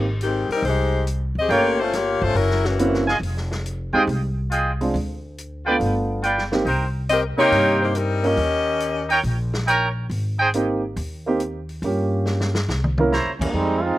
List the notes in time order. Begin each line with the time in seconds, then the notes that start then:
Already playing: G#1
0.21 D#3 G#3 C4 G4, closed hi-hat
0.49 G3 A#4, muted upright bass stroke, open hi-hat
0.53 C4 D#4
0.62 C2 C5, open hi-hat
0.66 G#3 D#4 G4
1.07 closed hi-hat
1.35 D2 C4 G4
1.39 G#4 D#5
1.49 G1 A3 A#3 C#4 F4 G4 A#4 C#5 G5, open hi-hat
1.80 A3 C#4 F4 C5
1.93 A#3 F4 G4 C#5, snare, closed hi-hat
2.22 G1 A3 C#4 F4 C5, kick
2.34 F#1 F#3 C#4 E4 A#4, open hi-hat
2.50 snare
2.64 E3 A#3 C#4 F#4, snare
2.79 A#3 C4 C#4 E4, closed hi-hat
2.94 snare
3.07 F4 G#4 D#5 G#5, snare
3.20 F1, open hi-hat
3.37 snare
3.51 snare
3.66 closed hi-hat
3.93 D#2 G#3 C4 D#4 F4 G4 G#4 D#5 G5
4.07 C2, open hi-hat
4.51 F4 G#4 D#5 G5, closed hi-hat
4.81 G#3 C4 D4 F4, open hi-hat
4.94 D2, open hi-hat
5.38 closed hi-hat
5.65 A3 B3 D4 F4 B4 D5 G5
5.80 G1, open hi-hat
6.23 F4 B4 D5 G5, closed hi-hat
6.38 snare
6.52 A#3 C4 D#4 G4, snare
6.65 C2 D#4 A#4 C5 G5, open hi-hat
7.09 C4 G4 A#4 D#5, closed hi-hat
7.37 C3 A#3 D#4 G4 A#4 C#5 G5 C6, muted upright bass stroke
7.51 G2, open hi-hat
7.83 A#3 D#4 G4 C5
7.95 G3 C4 D#4 A#4, closed hi-hat
8.23 A#3 C#4 F4 G4 A#4 D#5, open hi-hat
8.37 D#2, open hi-hat
8.80 closed hi-hat
9.09 D#4 A#4 C#5 G5, open hi-hat
9.23 A#1, open hi-hat
9.54 snare
9.67 D#4 A#4 C#5 G5, closed hi-hat
10.10 G#1, open hi-hat
10.38 D#4 G#4 C5 G5
10.54 A#3 C4 D#4 G4, closed hi-hat
10.96 D#2, open hi-hat
11.26 A#3 C4 D#4 G4
11.40 closed hi-hat
11.69 open hi-hat
11.82 G2 A#3 C#4 F4 G4, open hi-hat
12.26 snare
12.40 snare
12.55 snare
12.69 C2, snare
12.84 mid tom
12.98 A#3 C#4 E4 A#4, mid tom
13.11 E4 C5 C#5 A#5, snare
13.25 C#2
13.39 E2 E3 G3 A#3 C#4, kick, crash
13.52 F2 G3 G#3 C4 D#4
13.82 G#3 C4 D#4 F4